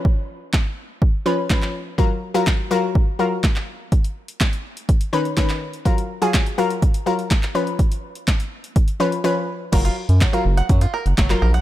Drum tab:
CC |----------------|----------------|----------------|----------------|
HH |----------------|----------------|xx-xxx-xxx-xxx-x|xx-xxx-xxx-xxx-x|
CP |----x-------xx--|----x-------xx--|----x-------xx--|----x-------xx--|
SD |----o-------o---|----o-------o---|----o-------o---|----o-------o---|
BD |o---o---o---o---|o---o---o---o---|o---o---o---o---|o---o---o---o---|

CC |----------------|x---------------|
HH |xx-xxx-xxx-x----|xx-xxx-xxx-xxx-x|
CP |----x-----------|----x-------xx--|
SD |----o-----------|----o-------o---|
BD |o---o---o-------|o---o---o---o---|